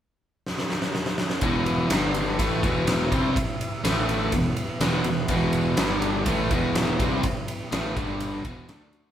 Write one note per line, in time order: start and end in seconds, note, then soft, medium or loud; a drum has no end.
0.46 snare medium
0.58 snare medium
0.70 snare medium
0.82 snare medium
0.95 snare medium
1.06 snare medium
1.18 snare medium
1.30 snare medium
1.41 1.87 E1 medium
1.41 1.90 E2 medium
1.41 1.90 B2 medium
1.41 1.91 E3 loud
1.41 1.90 E4 medium
1.41 1.88 G4 medium
1.41 1.90 B4 medium
1.41 1.90 E5 medium
1.41 kick loud
1.41 ride medium
1.66 ride medium
1.89 2.35 G1 medium
1.89 2.38 G2 medium
1.89 2.38 D3 loud
1.89 2.39 G3 medium
1.89 2.38 D4 medium
1.89 2.38 G4 medium
1.89 2.38 D5 medium
1.89 2.38 G5 medium
1.89 snare loud
1.89 ride loud
2.14 ride medium
2.38 2.61 A1 medium
2.38 2.62 A2 medium
2.38 2.63 E3 medium
2.38 2.63 A3 loud
2.38 3.83 E4 medium
2.38 3.83 G4 medium
2.38 3.82 B4 medium
2.38 3.82 E5 medium
2.38 kick medium
2.38 ride medium
2.63 3.08 E1 medium
2.63 3.11 E2 medium
2.63 3.11 B2 medium
2.63 3.12 E3 loud
2.63 kick loud
2.63 ride medium
2.87 snare loud
2.87 ride loud
3.11 3.34 C2 medium
3.11 3.35 C3 medium
3.11 3.35 G3 medium
3.11 3.36 C4 medium
3.11 kick loud
3.11 ride medium
3.36 kick loud
3.36 ride medium
3.61 ride medium
3.84 4.29 A1 medium
3.84 4.32 A2 medium
3.84 4.32 E3 medium
3.84 4.32 A3 medium
3.84 4.32 A3 loud
3.84 4.31 E4 medium
3.84 4.32 A4 medium
3.84 4.32 E5 medium
3.84 snare loud
3.84 ride loud
4.09 ride medium
4.32 4.55 E1 medium
4.32 4.52 E2 medium
4.32 4.52 B2 medium
4.32 5.76 B3 medium
4.32 5.76 E4 medium
4.32 5.76 G4 medium
4.32 5.76 B4 medium
4.32 kick medium
4.32 ride medium
4.57 ride medium
4.80 5.03 E1 medium
4.80 5.04 E2 loud
4.80 5.04 B2 loud
4.80 5.05 E3 loud
4.80 snare loud
4.80 ride medium
5.04 5.28 E1 medium
5.04 5.25 E2 medium
5.04 5.25 B2 medium
5.04 ride medium
5.28 5.74 E1 loud
5.28 5.77 E2 loud
5.28 5.78 B2 loud
5.28 5.78 E3 medium
5.28 kick medium
5.28 ride medium
5.53 ride medium
5.77 6.23 G1 loud
5.77 6.26 G2 medium
5.77 6.26 D3 medium
5.77 6.26 G3 medium
5.77 6.26 G3 loud
5.77 6.26 D4 medium
5.77 6.26 G4 medium
5.77 6.26 D5 medium
5.77 snare loud
5.77 ride medium
6.02 ride medium
6.26 6.49 A1 medium
6.26 6.51 A2 medium
6.26 6.51 E3 medium
6.26 6.51 A3 medium
6.26 7.95 B3 medium
6.26 7.95 E4 medium
6.26 7.94 G4 medium
6.26 7.95 B4 medium
6.26 kick loud
6.26 ride medium
6.51 6.96 E1 medium
6.51 6.99 E2 medium
6.51 6.99 B2 loud
6.51 6.99 E3 medium
6.51 kick loud
6.51 ride medium
6.75 snare loud
6.75 ride medium
6.99 7.22 C2 medium
6.99 7.23 C3 medium
6.99 7.23 G3 medium
6.99 7.23 C4 medium
6.99 kick loud
6.99 ride medium
7.23 kick medium
7.23 ride medium
7.48 ride medium
7.72 7.94 A1 medium
7.72 7.95 A2 medium
7.72 7.96 E3 loud
7.72 7.96 A3 medium
7.72 snare loud
7.72 ride medium
7.95 8.41 G1 medium
7.95 8.44 G2 medium
7.95 8.44 D3 medium
7.95 8.44 G3 medium
7.95 8.44 D4 medium
7.95 8.44 G4 medium
7.95 8.44 D5 medium
7.95 kick loud
7.95 ride medium
8.20 ride medium
8.45 8.67 E1 medium
8.45 8.68 E2 medium
8.45 8.68 B2 medium
8.45 8.68 E3 loud
8.45 kick loud
8.45 ride medium
8.66 9.11 D2 medium
8.66 9.11 D3 medium
8.66 9.11 A3 medium
8.66 9.11 D4 medium
8.66 9.11 A4 medium
8.66 9.11 D5 medium
8.66 snare loud
8.66 ride medium
8.70 9.11 D4 medium
8.93 ride medium